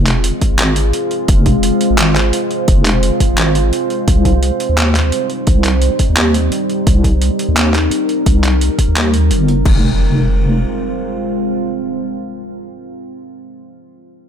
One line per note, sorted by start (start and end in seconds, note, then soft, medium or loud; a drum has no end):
0.00 0.32 F1 loud
0.00 4.03 G#3 medium
0.00 9.61 C4 medium
0.00 4.03 F4 medium
0.00 6.82 C5 medium
0.07 clap medium
0.07 closed hi-hat medium
0.24 closed hi-hat medium
0.41 kick medium
0.41 closed hi-hat medium
0.51 0.93 G#1 medium
0.59 clap loud
0.59 closed hi-hat medium
0.76 closed hi-hat medium
0.93 closed hi-hat medium
1.11 closed hi-hat soft
1.28 1.72 F1 medium
1.28 kick loud
1.28 closed hi-hat medium
1.46 kick medium
1.46 closed hi-hat medium
1.63 closed hi-hat medium
1.81 closed hi-hat medium
1.91 2.32 G#1 medium
1.98 clap loud
1.98 closed hi-hat medium
2.16 clap medium
2.16 closed hi-hat medium
2.33 closed hi-hat medium
2.51 closed hi-hat soft
2.68 3.11 F1 loud
2.68 kick loud
2.68 closed hi-hat medium
2.85 clap medium
2.85 closed hi-hat medium
3.03 closed hi-hat medium
3.20 kick medium
3.20 closed hi-hat medium
3.30 3.72 G#1 medium
3.38 clap loud
3.38 closed hi-hat medium
3.55 closed hi-hat medium
3.73 closed hi-hat medium
3.90 closed hi-hat soft
4.08 4.51 C2 loud
4.08 9.62 G3 medium
4.08 9.62 D#4 medium
4.08 kick loud
4.08 closed hi-hat medium
4.25 kick medium
4.25 closed hi-hat medium
4.43 closed hi-hat medium
4.60 closed hi-hat medium
4.70 5.11 D#2 medium
4.78 clap loud
4.78 closed hi-hat medium
4.95 clap medium
4.95 closed hi-hat medium
5.12 closed hi-hat medium
5.30 closed hi-hat soft
5.47 5.90 C2 loud
5.47 kick loud
5.47 closed hi-hat medium
5.64 clap medium
5.64 closed hi-hat medium
5.82 closed hi-hat medium
5.99 kick medium
5.99 closed hi-hat medium
6.09 6.51 D#2 medium
6.17 clap loud
6.17 closed hi-hat medium
6.34 closed hi-hat medium
6.52 closed hi-hat medium
6.70 closed hi-hat soft
6.87 7.30 C2 loud
6.87 9.63 A#4 medium
6.87 kick loud
6.87 closed hi-hat medium
7.04 kick medium
7.04 closed hi-hat medium
7.22 closed hi-hat medium
7.39 closed hi-hat medium
7.49 7.90 D#2 medium
7.57 clap loud
7.57 closed hi-hat medium
7.74 clap medium
7.74 closed hi-hat medium
7.91 closed hi-hat medium
8.09 closed hi-hat soft
8.26 8.70 C2 loud
8.26 kick loud
8.26 closed hi-hat medium
8.44 clap medium
8.44 closed hi-hat medium
8.61 closed hi-hat medium
8.79 kick medium
8.79 closed hi-hat medium
8.88 9.32 D#2 medium
8.96 clap loud
8.96 closed hi-hat medium
9.14 closed hi-hat medium
9.31 9.65 G1 loud
9.31 closed hi-hat medium
9.48 closed hi-hat soft
9.65 10.66 F1 medium
9.65 12.82 G#3 medium
9.65 12.82 C4 medium
9.65 12.82 F4 medium
9.65 12.82 C5 medium
9.65 kick loud
9.65 crash medium
9.65 impact medium